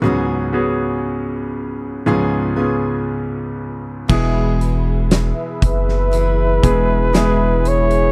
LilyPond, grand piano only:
<<
  \new Staff \with { instrumentName = "Grand piano" } { \time 4/4 \key e \mixolydian \tempo 4 = 59 <b cis' fis' gis'>8 <b cis' fis' gis'>4. <b cis' eis' gis'>8 <b cis' eis' gis'>4. | <gis b e' gis'>2 r8 <gis b e' gis'>8 <gis b e' gis'>4 | }
  \new Staff \with { instrumentName = "Grand piano" } { \clef bass \time 4/4 \key e \mixolydian <cis, gis,>2 <cis, gis,>2 | b,4. r2 r8 | }
>>